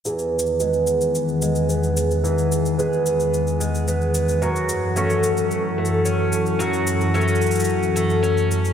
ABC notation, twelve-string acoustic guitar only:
X:1
M:4/4
L:1/8
Q:1/4=110
K:E
V:1 name="Twelve-string acoustic guitar"
[E,,G]2 [G,B,G]3 G, B,2 | [E,,G]2 [G,B,G]3 G, B,2 | [F,,F]2 [A,CF]3 A, C2 | [F,,F]2 [A,CF]3 A, C2 |]